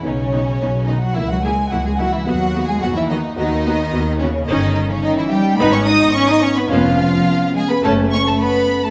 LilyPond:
<<
  \new Staff \with { instrumentName = "Violin section" } { \time 4/4 \key b \mixolydian \tempo 4 = 108 cis''4. dis''16 fis''16 e''16 fis''16 gis''8 fis''16 gis''16 fis''16 e''16 | fis''8. gis''16 fis''16 e''16 dis''8 dis''4. cis''8 | dis''8. cis''16 dis''16 e''16 g''8 b''16 cis'''16 dis'''8 cis'''16 dis'''16 cis'''16 b''16 | eis''4. gis''16 b''16 a''8 cis'''16 a''16 b''8. a''16 | }
  \new Staff \with { instrumentName = "Violin section" } { \time 4/4 \key b \mixolydian cis'4. dis'16 fis'16 e'16 fis'16 gis'8 fis'16 gis'16 fis'16 e'16 | fis'8. gis'16 fis'16 e'16 dis'8 dis'4. cis'8 | dis'8. cis'16 dis'16 e'16 g'8 b'16 cis''16 dis''8 cis''16 dis''16 cis''16 b'16 | eis'4. gis'16 b'16 a'8 cis''16 a'16 b'8. a'16 | }
  \new Staff \with { instrumentName = "French horn section" } { \time 4/4 \key b \mixolydian << { dis'8 r4. e'8 r4. | fis'8 r4. fis'8 r4. | dis'1 | cis'1 | } \\ { b8 r4. ais8 r4. | b8 r4. b8 r4. | cis'2 b2~ | b2 a2 | } >> }
  \new Staff \with { instrumentName = "Viola section" } { \time 4/4 \key b \mixolydian <b dis'>8 <b dis'>8 <b dis'>8 <b dis'>8 <ais e'>8 <ais e'>8 <ais e'>8 <ais e'>8 | <b fis'>8 <b fis'>8 <b fis'>8 <b fis'>8 <b fis'>8 <b fis'>8 <b fis'>8 <b fis'>8 | <cis' dis'>8 r4. <b dis'>8 r4. | <b cis'>8 r4. <a cis'>8 r4. | }
  \new Staff \with { instrumentName = "Cello section" } { \clef bass \time 4/4 \key b \mixolydian cis4. dis16 fis16 e16 fis16 gis8 fis16 gis16 fis16 e16 | fis8. gis16 fis16 e16 dis8 dis4. cis8 | dis8. cis16 dis16 e16 g8 b16 cis'16 dis'8 cis'16 dis'16 cis'16 b16 | eis4. gis16 b16 a8 cis'16 a16 b8. a16 | }
  \new Staff \with { instrumentName = "Double bass section" } { \clef bass \time 4/4 \key b \mixolydian b,,4 b,,4 cis,4 cis,4 | dis,4 dis,4 dis,4 dis,4 | g,,4 r4 gis,,4 r4 | eis,,4 r4 fis,,4 r4 | }
>>